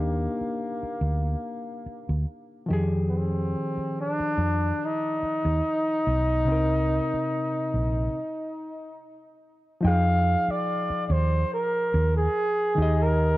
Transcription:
0.00 0.26 D#2 medium
0.00 2.29 A#3 medium
0.00 2.65 A#3 soft
0.00 2.67 D4 soft
0.00 2.64 D#4 medium
0.00 2.68 G4 medium
0.41 muted fingered electric bass stroke soft
0.83 muted fingered electric bass stroke soft
1.01 1.34 D2 medium
1.86 muted fingered electric bass stroke soft
2.09 2.24 D2 medium
2.66 6.02 D#3 medium
2.66 6.01 F3 medium
2.70 3.54 F2 medium
2.70 6.03 G4 medium
2.70 6.04 G#4 medium
3.08 3.19 B3 medium
3.17 3.99 C4 medium
3.77 muted fingered electric bass stroke soft
4.01 4.87 D4 loud
4.20 muted fingered electric bass stroke soft
4.38 4.71 F2 medium
4.85 9.03 D#4 loud
5.23 muted fingered electric bass stroke soft
5.45 5.60 D#2 medium
6.07 6.48 B1 medium
6.45 6.99 C2 loud
6.45 8.12 C3 medium
6.45 8.13 C4 medium
6.50 8.14 D#4 medium
6.50 8.15 A#4 medium
7.14 muted fingered electric bass stroke soft
7.74 8.07 A#1 medium
9.81 10.35 F2 loud
9.81 12.72 F3 medium
9.81 12.73 D#4 medium
9.85 12.76 G#4 medium
9.85 10.52 F5 loud
9.85 12.74 G5 medium
10.48 11.06 D5 loud
10.48 muted fingered electric bass stroke soft
10.90 muted fingered electric bass stroke soft
11.06 11.43 D#2 medium
11.06 11.13 D5 medium
11.12 11.53 C5 loud
11.54 12.14 A#4 medium
11.94 12.27 D#2 medium
12.17 13.04 G#4 loud
12.75 13.38 D#2 medium
12.75 13.38 D#3 medium
12.75 13.38 D#4 medium
12.80 13.38 G4 medium
12.80 13.38 D#5 medium
13.02 13.38 A#4 loud

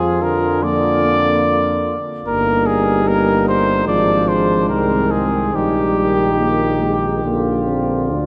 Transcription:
0.00 1.98 F2 soft
0.00 0.23 F3 soft
0.00 0.65 F3 soft
0.00 1.95 F4 soft
0.00 0.24 G#4 medium
0.21 1.98 D3 soft
0.21 0.65 A#4 medium
0.63 1.04 A#3 soft
0.63 1.99 D5 medium
1.04 1.97 A#3 soft
2.26 3.83 G1 soft
2.26 3.88 G3 medium
2.26 3.02 A#3 soft
2.26 3.89 D#4 soft
2.26 2.68 A#4 medium
2.66 3.09 G#4 medium
3.06 3.85 A#3 soft
3.06 3.47 A#4 medium
3.48 3.87 C5 medium
3.86 4.71 G#1 soft
3.86 4.71 F3 soft
3.86 5.50 G#3 medium
3.86 4.72 D4 soft
3.86 4.30 D5 medium
4.28 4.69 C5 medium
4.69 5.53 C2 soft
4.69 5.54 D#3 soft
4.69 5.55 C4 soft
4.69 5.12 A#4 medium
5.11 5.57 G#4 medium
5.54 7.22 A#1 soft
5.54 7.26 D#3 soft
5.54 6.30 G3 soft
5.54 7.25 D#4 soft
5.54 8.11 G4 medium
6.41 6.85 A#3 soft
6.83 7.25 G#3 soft
7.24 8.11 A#1 soft
7.24 8.26 D3 soft
7.24 7.70 A#3 soft
7.24 8.26 F4 soft
7.68 8.12 C4 soft
8.10 8.26 D2 soft
8.10 8.26 D4 soft

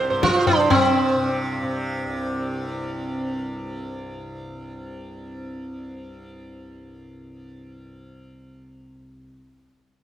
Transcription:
0.00 2.06 C2 medium
0.00 0.10 G2 medium
0.00 0.56 C3 medium
0.10 0.68 G2 medium
0.10 0.33 C5 soft
0.23 0.47 F4 loud
0.23 tabla ke medium
0.36 0.58 C5 soft
0.47 0.70 D4 medium
0.47 tabla tin medium
0.47 tabla ge medium
0.56 1.15 C3 medium
0.60 0.81 C5 soft
0.68 7.83 G2 medium
0.68 4.07 C4 loud
0.68 tabla na loud
0.68 tabla ge loud
1.15 1.63 C3 medium
1.63 8.78 C3 medium
2.06 9.21 C2 medium

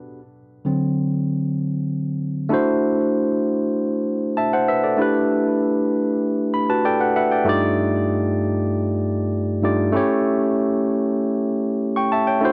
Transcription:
0.65 1.54 D3 medium
0.65 1.55 F#3 soft
0.65 1.55 C4 medium
2.49 4.94 A3 medium
2.49 4.95 D4 medium
2.49 4.95 E4 medium
2.49 4.96 F#4 medium
2.54 4.35 C5 medium
4.37 4.52 E5 medium
4.37 4.52 A5 medium
4.53 4.68 C5 medium
4.53 4.68 F#5 medium
4.68 4.83 B4 medium
4.68 4.83 E5 medium
4.84 5.14 A4 medium
4.84 5.13 D5 medium
4.97 7.42 A3 medium
4.97 7.43 D4 medium
4.97 7.43 E4 medium
4.97 6.52 G4 medium
5.02 6.52 B4 medium
6.54 6.68 B5 medium
6.70 6.85 F#4 medium
6.70 6.84 B4 medium
6.70 6.84 A5 medium
6.85 7.00 A4 medium
6.85 7.00 D5 medium
6.85 7.14 G5 medium
7.00 7.15 B4 medium
7.00 7.15 F#5 medium
7.16 7.31 B4 medium
7.16 7.31 E5 medium
7.16 7.45 F#5 medium
7.31 7.48 D5 medium
7.31 7.61 G5 medium
7.45 9.59 G2 medium
7.45 9.59 A3 medium
7.45 9.60 D#4 medium
7.45 9.60 F4 medium
7.45 9.61 G4 medium
7.49 9.61 D5 medium
9.62 9.94 G2 medium
9.62 9.91 A3 medium
9.62 9.95 D#4 medium
9.62 9.95 F4 medium
9.62 9.95 G4 medium
9.62 9.96 D5 medium
9.92 12.38 A3 medium
9.92 12.38 C#4 medium
9.92 12.39 E4 medium
9.92 12.40 G4 medium
9.97 11.48 C#5 medium
11.96 12.12 G5 medium
11.96 12.11 C#6 medium
12.12 12.27 E5 medium
12.12 12.27 A5 medium
12.27 12.52 C#5 soft
12.27 12.52 G5 medium
12.40 12.52 A3 medium
12.40 12.52 D4 medium
12.40 12.52 E4 medium
12.40 12.52 F#4 medium
12.45 12.52 C5 medium

